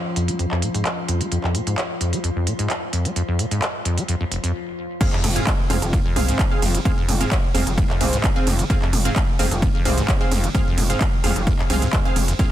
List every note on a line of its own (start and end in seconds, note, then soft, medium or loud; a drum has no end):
0.00 4.55 F3 medium
0.00 4.55 F4 medium
0.16 0.30 F2 medium
0.16 closed hi-hat medium
0.28 0.34 G#3 medium
0.28 closed hi-hat medium
0.39 0.46 F2 medium
0.39 closed hi-hat medium
0.51 0.64 F2 medium
0.51 clap soft
0.62 0.69 A#2 medium
0.62 closed hi-hat medium
0.74 0.83 G#2 medium
0.74 closed hi-hat medium
0.85 clap loud
0.85 closed hi-hat medium
1.08 1.22 F2 medium
1.08 closed hi-hat medium
1.20 1.27 G#3 medium
1.20 closed hi-hat medium
1.31 1.38 F2 medium
1.31 closed hi-hat medium
1.43 1.56 F2 medium
1.43 clap soft
1.55 1.61 A#2 medium
1.55 closed hi-hat medium
1.67 1.76 G#2 medium
1.67 closed hi-hat medium
1.78 clap loud
1.78 closed hi-hat medium
2.01 2.14 F2 medium
2.01 closed hi-hat medium
2.13 2.19 G#3 medium
2.13 closed hi-hat medium
2.24 2.31 F2 medium
2.24 closed hi-hat medium
2.36 2.48 F2 medium
2.47 2.54 A#2 medium
2.47 closed hi-hat medium
2.59 2.68 G#2 medium
2.59 closed hi-hat medium
2.70 clap loud
2.70 closed hi-hat medium
2.93 3.07 F2 medium
2.93 closed hi-hat medium
3.05 3.11 G#3 medium
3.05 closed hi-hat medium
3.16 3.23 F2 medium
3.16 closed hi-hat medium
3.28 3.41 F2 medium
3.39 3.46 A#2 medium
3.39 closed hi-hat loud
3.51 3.60 G#2 medium
3.51 closed hi-hat medium
3.62 clap loud
3.62 closed hi-hat medium
3.85 3.99 F2 medium
3.85 closed hi-hat medium
3.98 4.04 G#3 medium
3.98 closed hi-hat medium
4.08 4.15 F2 medium
4.08 closed hi-hat medium
4.21 4.24 F2 medium
4.31 4.38 F1 medium
4.31 closed hi-hat medium
4.44 4.53 F2 medium
4.44 closed hi-hat medium
5.01 5.07 F2 medium
5.01 5.09 C4 medium
5.01 5.09 G#4 medium
5.01 5.09 F5 medium
5.01 kick loud
5.01 closed hi-hat medium
5.01 mid tom medium
5.01 crash loud
5.01 ride medium
5.13 5.25 F2 medium
5.13 clap soft
5.24 5.41 F1 loud
5.24 5.30 A#2 medium
5.24 open hi-hat loud
5.24 mid tom medium
5.24 ride medium
5.36 5.45 G#2 medium
5.36 5.43 C4 medium
5.36 5.43 G#4 medium
5.36 5.43 F5 loud
5.36 closed hi-hat medium
5.47 kick loud
5.47 clap loud
5.47 closed hi-hat medium
5.47 mid tom medium
5.47 ride medium
5.70 5.79 F1 medium
5.70 5.84 F2 medium
5.70 5.78 C4 medium
5.70 5.78 G#4 medium
5.70 5.78 F5 medium
5.70 open hi-hat loud
5.70 mid tom medium
5.70 ride medium
5.82 5.98 F1 medium
5.82 5.88 G#3 medium
5.82 closed hi-hat medium
5.93 6.00 F2 medium
5.93 kick loud
5.93 closed hi-hat medium
5.93 mid tom medium
5.93 ride medium
6.05 6.18 F2 medium
6.16 6.33 C2 loud
6.16 6.23 A#2 medium
6.16 6.48 C4 medium
6.16 6.48 G#4 medium
6.16 6.48 F5 medium
6.16 open hi-hat loud
6.16 mid tom medium
6.16 ride medium
6.28 6.37 G#2 medium
6.28 closed hi-hat medium
6.39 kick loud
6.39 clap loud
6.39 closed hi-hat medium
6.39 mid tom medium
6.39 ride medium
6.51 6.63 C4 medium
6.51 6.63 G#4 medium
6.51 6.63 F5 loud
6.62 6.79 F1 medium
6.62 6.76 F2 medium
6.62 open hi-hat loud
6.62 mid tom medium
6.62 ride medium
6.74 6.80 G#3 medium
6.74 closed hi-hat medium
6.85 6.92 F2 medium
6.85 6.93 C4 medium
6.85 6.93 G#4 medium
6.85 6.93 F5 loud
6.85 kick loud
6.85 closed hi-hat medium
6.85 mid tom medium
6.85 ride medium
6.98 7.10 F2 medium
7.08 7.25 F1 loud
7.08 7.15 A#2 medium
7.08 open hi-hat loud
7.08 mid tom medium
7.08 ride medium
7.21 7.30 G#2 medium
7.21 7.28 C4 medium
7.21 7.28 G#4 medium
7.21 7.28 F5 medium
7.21 closed hi-hat medium
7.31 kick loud
7.31 clap loud
7.31 closed hi-hat medium
7.31 mid tom medium
7.31 ride medium
7.54 7.63 F1 medium
7.54 7.68 F2 medium
7.54 7.63 C4 medium
7.54 7.63 G#4 medium
7.54 7.63 F5 medium
7.54 open hi-hat loud
7.54 mid tom medium
7.54 ride medium
7.67 7.83 F1 medium
7.67 7.73 G#3 medium
7.67 closed hi-hat medium
7.78 7.84 F2 medium
7.78 kick loud
7.78 closed hi-hat medium
7.78 mid tom medium
7.78 ride medium
7.90 8.02 F2 medium
7.90 clap soft
8.01 8.18 C2 loud
8.01 8.07 A#2 medium
8.01 8.33 C4 medium
8.01 8.33 G#4 medium
8.01 8.33 F5 medium
8.01 open hi-hat loud
8.01 mid tom medium
8.01 ride medium
8.13 8.22 G#2 medium
8.13 closed hi-hat medium
8.24 kick loud
8.24 clap loud
8.24 closed hi-hat medium
8.24 mid tom medium
8.24 ride medium
8.36 8.48 C4 medium
8.36 8.48 G#4 medium
8.36 8.48 F5 loud
8.47 8.64 F1 medium
8.47 8.60 F2 medium
8.47 open hi-hat loud
8.47 mid tom medium
8.47 ride medium
8.59 8.65 G#3 medium
8.59 closed hi-hat medium
8.70 8.77 F2 medium
8.70 8.78 C4 medium
8.70 8.78 G#4 medium
8.70 8.78 F5 loud
8.70 kick loud
8.70 closed hi-hat medium
8.70 mid tom medium
8.70 ride medium
8.82 8.94 F2 medium
8.82 clap soft
8.93 9.10 F1 loud
8.93 9.00 A#2 medium
8.93 open hi-hat loud
8.93 mid tom medium
8.93 ride medium
9.05 9.14 G#2 medium
9.05 9.12 C4 medium
9.05 9.12 G#4 medium
9.05 9.12 F5 loud
9.05 closed hi-hat medium
9.16 kick loud
9.16 clap loud
9.16 closed hi-hat medium
9.16 mid tom medium
9.16 ride medium
9.39 9.48 F1 medium
9.39 9.53 F2 medium
9.39 9.47 C4 medium
9.39 9.47 G#4 medium
9.39 9.47 F5 medium
9.39 open hi-hat loud
9.39 mid tom medium
9.39 ride medium
9.51 9.67 F1 medium
9.51 9.57 G#3 medium
9.51 closed hi-hat medium
9.62 9.69 F2 medium
9.62 kick loud
9.62 closed hi-hat medium
9.62 mid tom medium
9.62 ride medium
9.74 9.87 F2 medium
9.85 10.02 C2 loud
9.85 9.92 A#2 medium
9.85 10.18 C4 medium
9.85 10.18 G#4 medium
9.85 10.18 F5 loud
9.85 open hi-hat loud
9.85 mid tom medium
9.85 ride medium
9.97 10.07 G#2 medium
9.97 closed hi-hat medium
10.08 kick loud
10.08 clap loud
10.08 closed hi-hat medium
10.08 mid tom medium
10.08 ride medium
10.21 10.32 C4 medium
10.21 10.32 G#4 medium
10.21 10.32 F5 loud
10.31 10.48 F1 medium
10.31 10.45 F2 medium
10.31 open hi-hat loud
10.31 mid tom medium
10.31 ride medium
10.44 10.50 G#3 medium
10.44 closed hi-hat medium
10.55 10.61 F2 medium
10.55 10.63 C4 medium
10.55 10.63 G#4 medium
10.55 10.63 F5 loud
10.55 kick loud
10.55 closed hi-hat medium
10.55 mid tom medium
10.55 ride medium
10.67 10.79 F2 medium
10.78 10.95 F1 loud
10.78 10.84 A#2 medium
10.78 open hi-hat loud
10.78 mid tom medium
10.78 ride medium
10.90 10.99 G#2 medium
10.90 10.97 C4 medium
10.90 10.97 G#4 medium
10.90 10.97 F5 loud
10.90 closed hi-hat medium
11.01 kick loud
11.01 clap loud
11.01 closed hi-hat medium
11.01 mid tom loud
11.01 ride medium
11.24 11.33 F1 medium
11.24 11.38 F2 medium
11.24 11.32 C4 medium
11.24 11.32 G#4 medium
11.24 11.32 F5 medium
11.24 open hi-hat loud
11.24 mid tom medium
11.24 ride medium
11.36 11.52 F1 medium
11.36 11.42 G#3 medium
11.36 closed hi-hat medium
11.47 11.54 F2 medium
11.47 kick loud
11.47 closed hi-hat medium
11.47 mid tom medium
11.47 ride medium
11.59 11.63 F2 medium
11.59 clap soft
11.70 11.87 C2 loud
11.70 11.77 F3 medium
11.70 12.02 C4 medium
11.70 12.02 G#4 medium
11.70 12.02 F5 medium
11.70 open hi-hat loud
11.70 mid tom medium
11.70 ride medium
11.82 11.88 G#2 loud
11.82 closed hi-hat medium
11.93 12.00 D#2 medium
11.93 kick loud
11.93 clap loud
11.93 closed hi-hat medium
11.93 mid tom medium
11.93 ride medium
12.05 12.17 C4 medium
12.05 12.17 G#4 medium
12.05 12.17 F5 loud
12.16 12.20 F1 loud
12.16 12.33 F1 medium
12.16 open hi-hat loud
12.16 mid tom medium
12.16 ride medium
12.28 12.34 F2 medium
12.28 closed hi-hat medium
12.39 12.46 F2 medium
12.39 12.47 C4 medium
12.39 12.47 G#4 medium
12.39 12.47 F5 loud
12.39 kick loud
12.39 closed hi-hat medium
12.39 mid tom loud
12.39 ride medium